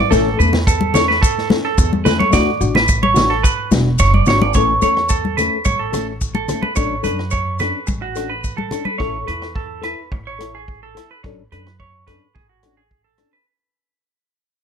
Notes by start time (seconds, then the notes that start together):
Already playing: D5
0.10 A1 E3 A3 C#4 A4, kick, snare, maracas
0.37 E2 A3 C#4 A4 B4, maracas
0.53 snare, low conga
0.67 A4, kick, maracas
0.81 high conga
0.94 A3 C#4 A4 C#5, snare, low conga, maracas
1.08 B4, snare
1.22 A4, kick, maracas
1.38 snare
1.50 C#4 A4, muted nylon-string guitar stroke, snare, high conga
1.65 A4
1.78 E2, kick, maracas
1.93 high conga
2.05 A3 C#4 A4 B4, snare, high conga, low conga, maracas
2.19 C#5, high conga
2.30 D2 A3 D4 F#4 D5, kick, snare, maracas
2.61 A1 D4 F#4, maracas
2.75 B4, snare, low conga
2.88 kick, maracas
3.03 C#5, high conga
3.14 D4 F#4, snare, low conga, maracas
3.30 A4
3.43 B4, kick, maracas
3.71 E1 D4 F#4, snare, high conga, maracas
3.99 F#1 C#5, kick, snare, maracas
4.14 D5, high conga
4.26 G#1 D4 F#4 C#5, snare, low conga, maracas
4.42 D5, high conga
4.54 A1 E3 A3 C#4 A4 C#5, kick, cross-stick, maracas
4.82 E2 A3 C#4 A4 C#5, closed hi-hat, high conga, maracas
4.97 cross-stick
5.09 A4, kick, maracas
5.25 high conga
5.37 A3 C#4 A4 B4, cross-stick, closed hi-hat, low conga, maracas
5.65 A1 C#5, kick, high conga, maracas
5.79 A4
5.92 A3 C#4 A4, cross-stick, closed hi-hat, low conga, maracas
6.21 kick, maracas
6.35 A4, high conga
6.48 A3 C#4 A4, cross-stick, closed hi-hat, low conga, maracas
6.62 B4, high conga
6.75 A1 F#3 C#4 D4 A4 C#5, kick, cross-stick, maracas
7.03 F#2 C#4 D4 A4 B4, closed hi-hat, high conga, maracas
7.19 cross-stick
7.31 C#5, kick, maracas
7.59 C#4 D4 A4 B4, cross-stick, closed hi-hat, low conga, maracas
7.87 A1, muted clean electric guitar stroke, kick, high conga, maracas
8.02 F#4
8.15 C#4 D4 A4, cross-stick, closed hi-hat, maracas
8.30 B4
8.44 kick, maracas
8.57 A4, high conga
8.71 C#4 D4 A4, cross-stick, closed hi-hat, low conga, maracas
8.85 B4, high conga
8.98 A1 C#4 E4 A4 C#5, kick, cross-stick
9.26 E2 E4 A4 B4, closed hi-hat
9.42 cross-stick
9.56 A4, kick
9.81 E4 A4 B4, cross-stick, closed hi-hat
10.12 A1, muted clean electric guitar stroke, kick
10.27 C#5
10.39 E4 A4, cross-stick, closed hi-hat
10.55 G#4
10.68 kick
10.83 A4
10.95 E4 A4, cross-stick, closed hi-hat
11.11 B4
11.24 A1 F#3 C#4 D4 A4, muted clean electric guitar stroke, kick, cross-stick
11.52 F#2 C#4 D4 A4 B4, closed hi-hat
11.67 cross-stick
11.80 C#5, kick
12.07 C#4 D4 A4 B4, kick, cross-stick, closed hi-hat
12.35 A1 G#4, kick
12.49 F#4
12.63 C#4 D4 A4, cross-stick, closed hi-hat
12.77 G#4
12.91 kick
13.04 A4
13.18 C#4 D4 A4, cross-stick, closed hi-hat
13.33 B4